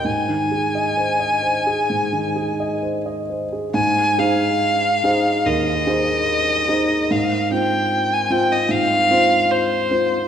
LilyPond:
<<
  \new Staff \with { instrumentName = "Violin" } { \time 4/4 \key aes \major \tempo 4 = 72 aes''2. r4 | aes''8 f''4. ees''2 | f''8 g''8. aes''16 g''16 ees''16 f''4 c''4 | }
  \new Staff \with { instrumentName = "Grand piano" } { \time 4/4 \key aes \major aes,16 ees16 aes'16 ees''16 c''16 ees''16 c''16 aes'16 aes,16 ees16 aes'16 ees''16 c''16 ees''16 c''16 aes'16 | aes,8 <ees' aes' c''>4 <ees' aes' c''>8 ees,8 <ees' aes' c''>4 <ees' aes' c''>8 | aes,8 <c' f' c''>4 <c' f' c''>8 aes,8 <c' f' c''>4 <c' f' c''>8 | }
>>